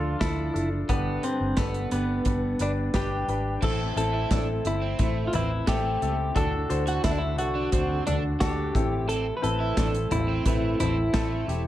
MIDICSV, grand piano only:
0, 0, Header, 1, 2, 480
1, 0, Start_track
1, 0, Tempo, 683371
1, 623, Time_signature, 4, 2, 24, 8
1, 8198, End_track
2, 0, Start_track
2, 0, Title_t, "Grand piano"
2, 0, Program_c, 0, 0
2, 0, Control_c, 0, 64, 127
2, 0, Note_on_c, 0, 62, 75
2, 0, Note_on_c, 0, 65, 70
2, 0, Note_on_c, 0, 69, 82
2, 74, Note_off_c, 0, 62, 0
2, 74, Note_off_c, 0, 65, 0
2, 74, Note_off_c, 0, 69, 0
2, 142, Note_on_c, 0, 69, 90
2, 143, Note_on_c, 0, 62, 80
2, 146, Note_on_c, 0, 65, 71
2, 311, Note_off_c, 0, 69, 0
2, 312, Note_off_c, 0, 62, 0
2, 313, Note_off_c, 0, 65, 0
2, 377, Note_on_c, 0, 69, 66
2, 378, Note_on_c, 0, 62, 62
2, 381, Note_on_c, 0, 65, 58
2, 549, Note_off_c, 0, 62, 0
2, 549, Note_off_c, 0, 69, 0
2, 551, Note_off_c, 0, 65, 0
2, 625, Note_on_c, 0, 71, 88
2, 627, Note_on_c, 0, 62, 76
2, 627, Note_on_c, 0, 67, 73
2, 628, Note_on_c, 0, 43, 54
2, 630, Note_on_c, 0, 50, 55
2, 632, Control_c, 0, 64, 0
2, 752, Control_c, 0, 64, 127
2, 793, Note_off_c, 0, 71, 0
2, 794, Note_off_c, 0, 62, 0
2, 794, Note_off_c, 0, 67, 0
2, 869, Note_on_c, 0, 62, 61
2, 870, Note_on_c, 0, 71, 69
2, 872, Note_on_c, 0, 67, 60
2, 1035, Note_off_c, 0, 62, 0
2, 1035, Note_off_c, 0, 71, 0
2, 1037, Note_off_c, 0, 67, 0
2, 1109, Note_on_c, 0, 62, 60
2, 1110, Note_on_c, 0, 67, 56
2, 1111, Note_on_c, 0, 69, 71
2, 1275, Note_off_c, 0, 62, 0
2, 1276, Note_off_c, 0, 67, 0
2, 1276, Note_off_c, 0, 69, 0
2, 1318, Note_off_c, 0, 43, 0
2, 1319, Note_off_c, 0, 50, 0
2, 1354, Note_on_c, 0, 67, 57
2, 1354, Note_on_c, 0, 71, 65
2, 1356, Note_on_c, 0, 62, 61
2, 1518, Note_off_c, 0, 67, 0
2, 1518, Note_off_c, 0, 71, 0
2, 1519, Note_off_c, 0, 62, 0
2, 1590, Note_on_c, 0, 62, 57
2, 1594, Note_on_c, 0, 67, 53
2, 1594, Note_on_c, 0, 71, 64
2, 1756, Note_off_c, 0, 62, 0
2, 1758, Note_off_c, 0, 67, 0
2, 1758, Note_off_c, 0, 71, 0
2, 1832, Note_on_c, 0, 67, 63
2, 1832, Note_on_c, 0, 71, 86
2, 1833, Note_on_c, 0, 62, 72
2, 1997, Note_off_c, 0, 67, 0
2, 1997, Note_off_c, 0, 71, 0
2, 1998, Note_off_c, 0, 62, 0
2, 2066, Note_on_c, 0, 62, 90
2, 2066, Note_on_c, 0, 67, 85
2, 2069, Note_on_c, 0, 71, 99
2, 2234, Note_off_c, 0, 62, 0
2, 2234, Note_off_c, 0, 67, 0
2, 2236, Note_off_c, 0, 71, 0
2, 2308, Note_on_c, 0, 71, 74
2, 2310, Note_on_c, 0, 67, 61
2, 2311, Note_on_c, 0, 62, 70
2, 2476, Note_off_c, 0, 71, 0
2, 2477, Note_off_c, 0, 62, 0
2, 2477, Note_off_c, 0, 67, 0
2, 2542, Note_on_c, 0, 52, 57
2, 2542, Note_on_c, 0, 64, 70
2, 2543, Note_on_c, 0, 60, 79
2, 2544, Note_on_c, 0, 45, 54
2, 2544, Note_on_c, 0, 69, 85
2, 2555, Control_c, 0, 64, 0
2, 2683, Control_c, 0, 64, 127
2, 2713, Note_off_c, 0, 60, 0
2, 2713, Note_off_c, 0, 64, 0
2, 2714, Note_off_c, 0, 69, 0
2, 2786, Note_on_c, 0, 69, 87
2, 2787, Note_on_c, 0, 60, 83
2, 2788, Note_on_c, 0, 64, 74
2, 2955, Note_off_c, 0, 60, 0
2, 2955, Note_off_c, 0, 69, 0
2, 2956, Note_off_c, 0, 64, 0
2, 3027, Note_on_c, 0, 64, 57
2, 3032, Note_on_c, 0, 60, 63
2, 3033, Note_on_c, 0, 69, 67
2, 3195, Note_off_c, 0, 64, 0
2, 3198, Note_off_c, 0, 60, 0
2, 3198, Note_off_c, 0, 69, 0
2, 3236, Note_off_c, 0, 52, 0
2, 3237, Note_off_c, 0, 45, 0
2, 3268, Note_on_c, 0, 60, 64
2, 3269, Note_on_c, 0, 64, 57
2, 3273, Note_on_c, 0, 69, 65
2, 3436, Note_off_c, 0, 60, 0
2, 3436, Note_off_c, 0, 64, 0
2, 3438, Note_off_c, 0, 69, 0
2, 3506, Note_on_c, 0, 72, 65
2, 3507, Note_on_c, 0, 60, 61
2, 3507, Note_on_c, 0, 64, 56
2, 3675, Note_off_c, 0, 60, 0
2, 3675, Note_off_c, 0, 64, 0
2, 3675, Note_off_c, 0, 72, 0
2, 3744, Note_on_c, 0, 60, 61
2, 3745, Note_on_c, 0, 64, 53
2, 3746, Note_on_c, 0, 71, 66
2, 3914, Note_off_c, 0, 60, 0
2, 3915, Note_off_c, 0, 64, 0
2, 3915, Note_off_c, 0, 71, 0
2, 3987, Note_on_c, 0, 64, 73
2, 3989, Note_on_c, 0, 60, 80
2, 3989, Note_on_c, 0, 69, 84
2, 4155, Note_off_c, 0, 64, 0
2, 4156, Note_off_c, 0, 69, 0
2, 4157, Note_off_c, 0, 60, 0
2, 4228, Note_on_c, 0, 60, 61
2, 4228, Note_on_c, 0, 64, 59
2, 4229, Note_on_c, 0, 69, 69
2, 4396, Note_off_c, 0, 60, 0
2, 4396, Note_off_c, 0, 64, 0
2, 4396, Note_off_c, 0, 69, 0
2, 4461, Note_on_c, 0, 45, 56
2, 4461, Note_on_c, 0, 62, 83
2, 4462, Note_on_c, 0, 66, 77
2, 4463, Note_on_c, 0, 69, 95
2, 4474, Control_c, 0, 64, 0
2, 4597, Control_c, 0, 64, 127
2, 4632, Note_off_c, 0, 62, 0
2, 4633, Note_off_c, 0, 66, 0
2, 4634, Note_off_c, 0, 69, 0
2, 4702, Note_on_c, 0, 62, 79
2, 4703, Note_on_c, 0, 66, 76
2, 4703, Note_on_c, 0, 72, 95
2, 4873, Note_off_c, 0, 62, 0
2, 4873, Note_off_c, 0, 66, 0
2, 4874, Note_off_c, 0, 72, 0
2, 4953, Note_on_c, 0, 66, 58
2, 4954, Note_on_c, 0, 62, 64
2, 4955, Note_on_c, 0, 69, 71
2, 5119, Note_off_c, 0, 62, 0
2, 5119, Note_off_c, 0, 66, 0
2, 5119, Note_off_c, 0, 69, 0
2, 5156, Note_off_c, 0, 45, 0
2, 5186, Note_on_c, 0, 62, 62
2, 5188, Note_on_c, 0, 66, 60
2, 5188, Note_on_c, 0, 69, 72
2, 5355, Note_off_c, 0, 62, 0
2, 5356, Note_off_c, 0, 66, 0
2, 5356, Note_off_c, 0, 69, 0
2, 5430, Note_on_c, 0, 62, 64
2, 5430, Note_on_c, 0, 66, 56
2, 5431, Note_on_c, 0, 72, 69
2, 5597, Note_off_c, 0, 62, 0
2, 5597, Note_off_c, 0, 66, 0
2, 5597, Note_off_c, 0, 72, 0
2, 5670, Note_on_c, 0, 62, 65
2, 5670, Note_on_c, 0, 69, 66
2, 5671, Note_on_c, 0, 66, 56
2, 5837, Note_off_c, 0, 62, 0
2, 5837, Note_off_c, 0, 66, 0
2, 5837, Note_off_c, 0, 69, 0
2, 5906, Note_on_c, 0, 62, 81
2, 5909, Note_on_c, 0, 66, 73
2, 5910, Note_on_c, 0, 69, 89
2, 6074, Note_off_c, 0, 62, 0
2, 6076, Note_off_c, 0, 66, 0
2, 6077, Note_off_c, 0, 69, 0
2, 6143, Note_on_c, 0, 45, 55
2, 6143, Note_on_c, 0, 69, 75
2, 6145, Note_on_c, 0, 52, 54
2, 6145, Note_on_c, 0, 64, 62
2, 6147, Note_on_c, 0, 60, 69
2, 6156, Control_c, 0, 64, 0
2, 6291, Control_c, 0, 64, 127
2, 6529, Note_off_c, 0, 64, 0
2, 6529, Note_off_c, 0, 69, 0
2, 6530, Note_off_c, 0, 60, 0
2, 6617, Note_on_c, 0, 60, 87
2, 6618, Note_on_c, 0, 64, 74
2, 6618, Note_on_c, 0, 71, 96
2, 6790, Note_off_c, 0, 60, 0
2, 6790, Note_off_c, 0, 64, 0
2, 6791, Note_off_c, 0, 71, 0
2, 6836, Note_off_c, 0, 45, 0
2, 6837, Note_off_c, 0, 52, 0
2, 6862, Note_on_c, 0, 64, 60
2, 6863, Note_on_c, 0, 69, 75
2, 6864, Note_on_c, 0, 60, 66
2, 7032, Note_off_c, 0, 64, 0
2, 7033, Note_off_c, 0, 60, 0
2, 7033, Note_off_c, 0, 69, 0
2, 7106, Note_on_c, 0, 64, 61
2, 7107, Note_on_c, 0, 60, 65
2, 7109, Note_on_c, 0, 69, 69
2, 7274, Note_off_c, 0, 64, 0
2, 7275, Note_off_c, 0, 60, 0
2, 7276, Note_off_c, 0, 69, 0
2, 7348, Note_on_c, 0, 64, 58
2, 7348, Note_on_c, 0, 71, 67
2, 7349, Note_on_c, 0, 60, 66
2, 7515, Note_off_c, 0, 60, 0
2, 7515, Note_off_c, 0, 64, 0
2, 7515, Note_off_c, 0, 71, 0
2, 7589, Note_on_c, 0, 60, 64
2, 7591, Note_on_c, 0, 69, 64
2, 7592, Note_on_c, 0, 64, 55
2, 7756, Note_off_c, 0, 60, 0
2, 7757, Note_off_c, 0, 64, 0
2, 7757, Note_off_c, 0, 69, 0
2, 7819, Note_on_c, 0, 64, 74
2, 7821, Note_on_c, 0, 69, 90
2, 7822, Note_on_c, 0, 60, 82
2, 7990, Note_off_c, 0, 64, 0
2, 7992, Note_off_c, 0, 60, 0
2, 7992, Note_off_c, 0, 69, 0
2, 8061, Note_on_c, 0, 64, 56
2, 8062, Note_on_c, 0, 60, 60
2, 8064, Note_on_c, 0, 67, 69
2, 8198, Note_off_c, 0, 60, 0
2, 8198, Note_off_c, 0, 64, 0
2, 8198, Note_off_c, 0, 67, 0
2, 8198, End_track
0, 0, End_of_file